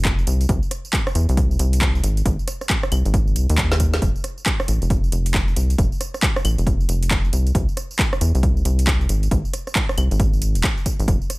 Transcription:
Already playing: analog synth bass F1
0.05 kick, clap, closed hi-hat, tambourine
0.19 tambourine
0.27 analog synth bass C2, closed hi-hat, tambourine
0.41 closed hi-hat, tambourine
0.49 analog synth bass C2, kick, closed hi-hat, tambourine
0.63 tambourine
0.71 cross-stick, closed hi-hat, tambourine
0.85 tambourine
0.93 kick, clap, closed hi-hat, tambourine
1.07 cross-stick, tambourine
1.15 analog synth bass E2, closed hi-hat, tambourine
1.29 analog synth bass C2, closed hi-hat, tambourine
1.37 kick, closed hi-hat, tambourine
1.51 tambourine
1.59 analog synth bass C2, closed hi-hat, tambourine
1.73 closed hi-hat, tambourine
1.81 kick, clap, closed hi-hat, tambourine
1.95 tambourine
2.03 analog synth bass G#1, closed hi-hat, tambourine
2.17 closed hi-hat, tambourine
2.26 analog synth bass G#1, kick, closed hi-hat, tambourine
2.39 tambourine
2.48 cross-stick, closed hi-hat, tambourine
2.61 cross-stick, tambourine
2.70 kick, clap, closed hi-hat, tambourine
2.83 cross-stick, tambourine
2.92 analog synth bass C2, closed hi-hat, tambourine, claves
3.05 analog synth bass G#1, closed hi-hat, tambourine
3.14 kick, closed hi-hat, tambourine
3.27 tambourine
3.36 analog synth bass C2, closed hi-hat, tambourine
3.50 analog synth bass D#2, closed hi-hat, tambourine
3.58 kick, clap, closed hi-hat, tambourine
3.72 snare, tambourine
3.80 kick, closed hi-hat, tambourine
3.94 snare, closed hi-hat, tambourine
4.02 analog synth bass F1, kick, closed hi-hat, tambourine
4.16 tambourine
4.24 cross-stick, closed hi-hat, tambourine
4.38 tambourine
4.46 kick, clap, closed hi-hat, tambourine
4.60 cross-stick, tambourine
4.68 analog synth bass A1, closed hi-hat, tambourine
4.82 analog synth bass F1, closed hi-hat, tambourine
4.90 kick, closed hi-hat, tambourine
5.04 tambourine
5.12 analog synth bass F1, closed hi-hat, tambourine
5.26 closed hi-hat, tambourine
5.34 kick, clap, closed hi-hat, tambourine
5.48 tambourine
5.56 analog synth bass C2, closed hi-hat, tambourine
5.70 closed hi-hat, tambourine
5.78 analog synth bass F1, kick, closed hi-hat, tambourine
5.92 tambourine
6.01 cross-stick, closed hi-hat, tambourine
6.14 cross-stick, tambourine
6.23 kick, clap, closed hi-hat, tambourine
6.36 cross-stick, tambourine
6.45 analog synth bass A1, closed hi-hat, tambourine, claves
6.58 analog synth bass F1, closed hi-hat, tambourine
6.67 kick, closed hi-hat, tambourine
6.81 tambourine
6.89 analog synth bass F1, closed hi-hat, tambourine
7.03 closed hi-hat, tambourine
7.11 kick, clap, closed hi-hat, tambourine
7.25 tambourine
7.33 analog synth bass C2, closed hi-hat, tambourine
7.47 closed hi-hat, tambourine
7.55 analog synth bass C2, kick, closed hi-hat, tambourine
7.69 tambourine
7.77 cross-stick, closed hi-hat, tambourine
7.91 tambourine
7.99 kick, clap, closed hi-hat, tambourine
8.13 cross-stick, tambourine
8.21 analog synth bass E2, closed hi-hat, tambourine
8.35 analog synth bass C2, closed hi-hat, tambourine
8.43 kick, closed hi-hat, tambourine
8.57 tambourine
8.65 analog synth bass C2, closed hi-hat, tambourine
8.79 closed hi-hat, tambourine
8.87 kick, clap, closed hi-hat, tambourine
9.01 tambourine
9.09 analog synth bass G#1, closed hi-hat, tambourine
9.23 closed hi-hat, tambourine
9.31 analog synth bass G#1, kick, closed hi-hat, tambourine
9.45 tambourine
9.53 cross-stick, closed hi-hat, tambourine
9.67 cross-stick, tambourine
9.75 kick, clap, closed hi-hat, tambourine
9.89 cross-stick, tambourine
9.98 analog synth bass C2, closed hi-hat, tambourine, claves
10.11 analog synth bass G#1, closed hi-hat, tambourine
10.20 kick, closed hi-hat, tambourine
10.33 tambourine
10.42 closed hi-hat, tambourine
10.55 analog synth bass D#1, closed hi-hat, tambourine
10.64 kick, clap, closed hi-hat, tambourine
10.77 tambourine
10.86 kick, closed hi-hat, tambourine
11.00 analog synth bass G#1, closed hi-hat, tambourine
11.08 analog synth bass F1, kick, closed hi-hat, tambourine
11.22 tambourine
11.30 cross-stick, closed hi-hat, tambourine

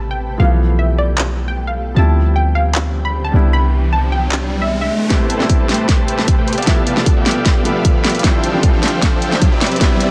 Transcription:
Already playing: 808-style bass A1, ambient pad C3 A3 G4 B4, felt piano G3 B3 C4 E4
0.11 synth pluck G5
0.38 808-style bass B1, felt piano E3 F3 A3 B3, ambient pad G3 A3 B3, synth pluck F5
0.79 synth pluck E5
0.98 synth pluck D5
1.18 clap
1.48 synth pluck G5
1.67 synth pluck F5
1.94 808-style bass D2, ambient pad D3 C4 G4, felt piano F3 G3 C4 E4, synth pluck A5, riser
2.36 synth pluck G5
2.55 synth pluck F5
2.75 clap
3.05 synth pluck B5
3.25 synth pluck A5
3.32 808-style bass C2, ambient pad C3 E3 B3 D4, felt piano G3 B3 D4
3.36 felt piano E4
3.53 synth pluck B5
3.93 synth pluck A5
4.12 synth pluck G5
4.32 clap
4.62 synth pluck E5
4.81 synth pluck E5
5.09 ambient pad C3 A3 G4, felt piano G3 B3 C4 E4, supersaw synth A3 G4 B4 C5 A5, kick, snare, closed hi-hat, riser
5.30 closed hi-hat
5.38 felt piano G3 C4 E4, snare
5.49 kick, closed hi-hat
5.60 supersaw synth A3 G4 B4 C5 A5
5.69 snare, closed hi-hat
5.74 closed hi-hat
5.89 kick, snare, closed hi-hat
6.08 closed hi-hat
6.18 snare
6.28 kick, closed hi-hat
6.38 supersaw synth A3 G4 B4 C5 G5
6.48 closed hi-hat
6.53 closed hi-hat
6.58 supersaw synth B3 G4 D5 E5 F5 A5, closed hi-hat
6.62 felt piano F3, closed hi-hat
6.67 ambient pad B2 F3, felt piano A3 B3 E4, kick, snare, closed hi-hat
6.87 closed hi-hat
6.95 felt piano F3 A3 B3, snare
7.06 kick, closed hi-hat
7.17 supersaw synth B3 G4 D5 E5 F5 G5
7.26 snare, closed hi-hat
7.31 closed hi-hat
7.45 kick, snare, closed hi-hat
7.63 felt piano F3 A3 B3, supersaw synth B3 G4 D5 E5 F5 B5, closed hi-hat
7.85 kick, closed hi-hat
8.04 snare, closed hi-hat
8.10 closed hi-hat
8.15 closed hi-hat
8.19 felt piano F3, closed hi-hat
8.24 felt piano G3 C4 E4, ambient pad D4 G4, supersaw synth D4 A4 C5 E5 F5 G5, kick, snare, closed hi-hat
8.44 closed hi-hat
8.52 felt piano F3 G3 C4
8.63 kick, closed hi-hat
8.73 supersaw synth D4 A4 C5 E5 F5 G5
8.83 snare, closed hi-hat
8.88 closed hi-hat
9.02 kick, snare, closed hi-hat
9.22 closed hi-hat
9.32 snare
9.42 kick, closed hi-hat
9.52 supersaw synth C4 G4 B4 D5 E5
9.61 ambient pad E3 D4 G4 B5, snare, closed hi-hat
9.66 closed hi-hat
9.71 supersaw synth C4 G4 B4 D5 E5, closed hi-hat
9.76 felt piano G3, closed hi-hat
9.80 felt piano B3 D4 E4, kick, snare, closed hi-hat
10.00 closed hi-hat

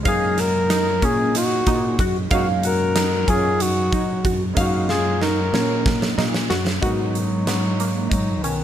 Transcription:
0.03 fretless electric bass F#2, grand piano G#3 A#3 C#4 D#4, clean electric guitar D#4, synth arpeggio sound F5, kick, closed hi-hat
0.08 bass clarinet G#4
0.38 clean electric guitar F#4, bass clarinet A#4, snare, closed hi-hat
0.70 synth arpeggio sound D#4, snare, closed hi-hat
1.02 fretless electric bass A#2, synth arpeggio sound C#4, clean electric guitar F4, bass clarinet G#4, kick, closed hi-hat
1.35 clean electric guitar D#4, bass clarinet F#4, snare, closed hi-hat
1.67 fretless electric bass A#2, synth arpeggio sound D#4, kick, closed hi-hat
1.99 fretless electric bass F#2, synth arpeggio sound F#4, kick, closed hi-hat
2.30 fretless electric bass F#2, grand piano G#3 A#3 C#4, clean electric guitar D#4, synth arpeggio sound F5, kick, closed hi-hat
2.34 grand piano D#4, bass clarinet F#4
2.63 clean electric guitar F#4, bass clarinet A#4, closed hi-hat
2.96 synth arpeggio sound D#4, snare, closed hi-hat
3.28 fretless electric bass F#2, synth arpeggio sound C#4, clean electric guitar F4, bass clarinet G#4, kick, closed hi-hat
3.60 clean electric guitar D#4, bass clarinet F#4, closed hi-hat
3.92 fretless electric bass F#3, synth arpeggio sound D#4, kick, closed hi-hat
4.25 fretless electric bass F#2, synth arpeggio sound F#4, kick, closed hi-hat
4.54 fretless electric bass F#2, grand piano G#3 A#3 C#4, clean electric guitar D#4, synth arpeggio sound F5, kick, closed hi-hat
4.58 grand piano D#4, bass clarinet F#4
4.89 clean electric guitar F4, bass clarinet G#4, snare
5.21 synth arpeggio sound D#4, clean electric guitar F#4, bass clarinet A#4, snare
5.53 fretless electric bass A#2, synth arpeggio sound C#4, snare
5.86 kick, snare
6.02 snare
6.18 fretless electric bass A#2, synth arpeggio sound D#4, snare
6.34 snare
6.50 fretless electric bass F#2, synth arpeggio sound F#4, snare
6.67 snare
6.81 fretless electric bass G#2, bass clarinet F#3, grand piano G#3 B3 D#4 A#4, clean electric guitar D#4, synth arpeggio sound F#4, kick, closed hi-hat
7.15 closed hi-hat
7.47 synth arpeggio sound B3, snare, closed hi-hat
7.80 synth arpeggio sound A#3, closed hi-hat
8.10 fretless electric bass G#2, bass clarinet F#3, clean electric guitar D#4, kick, closed hi-hat
8.42 fretless electric bass B1, bass clarinet D#3, clean electric guitar B3, synth arpeggio sound C#4, closed hi-hat

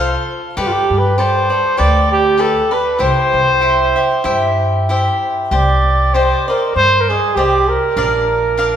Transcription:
Already playing: upright bass C2, cavaquinho F4 A4 C5, trumpet A4
0.00 cavaquinho F5
0.57 upright bass G2, cavaquinho G4 A4 B4 D5, trumpet G4
0.67 trumpet F4
0.73 trumpet G4
0.90 upright bass G2
0.98 trumpet B4
1.18 cavaquinho G4 A4 D5, trumpet C5
1.50 cavaquinho A4 D5
1.77 upright bass D2, cavaquinho G4 A4 B4 D5, trumpet D5
2.12 trumpet G4
2.37 cavaquinho G4 A4 B4 D5, trumpet A4
2.71 cavaquinho A4 B4 D5, trumpet B4
2.99 upright bass C2, cavaquinho E4 G4 C5 E5, trumpet C5
3.33 upright bass C2
3.61 cavaquinho E4 G4 C5 E5
3.96 cavaquinho G4 C5 E5
4.24 upright bass G2, cavaquinho E4 G4 C5 E5
4.89 cavaquinho E4 G4 C5 E5
5.51 upright bass C2, cavaquinho G4 C5 D5, trumpet D5
6.14 cavaquinho G4 C5 D5 D#5, trumpet C5
6.48 trumpet A#4, cavaquinho C5 D5 D#5
6.76 upright bass G2, trumpet C5
7.01 trumpet A#4
7.09 trumpet G#4, cavaquinho C5 D5 D#5
7.35 upright bass C2, trumpet G4, cavaquinho G4 C5 D5 D#5
7.68 trumpet A#4
7.96 upright bass A#1, cavaquinho D4 A#4 D5 F5
8.57 cavaquinho D4 A#4 D5 F5

